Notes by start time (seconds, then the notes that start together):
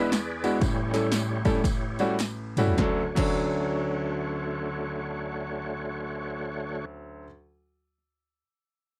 Already playing: E2 E3 G#4 B4 E5
0.09 G#4 B4 D5, snare, clap, ride, tambourine
0.44 G#3 B3 D4 E4 F#4, ride, tambourine
0.59 A1 A2 G3 C#4 E4 G4 C#5, kick, ride
0.63 tambourine
0.93 G3 A3 C#4 E4 A4, clap, ride, tambourine
1.12 snare, clap, ride, tambourine
1.43 A2 G3 A3 C#4 E4 A4, kick, ride, tambourine
1.55 snare
1.64 kick, ride, tambourine
1.99 G3 A3 C#4 E4 F#4, ride, tambourine
2.19 snare, clap, ride, tambourine
2.57 G3 A3 C#4 E4 F#4, mid tom, ride, tambourine
2.67 floor tom
2.77 D2 D3 F#3 A3 C#4 D4 F#4 C#5, kick, snare, clap
2.81 A4
3.15 D2 F#3 C#4 D4, kick, clap, crash
3.20 A4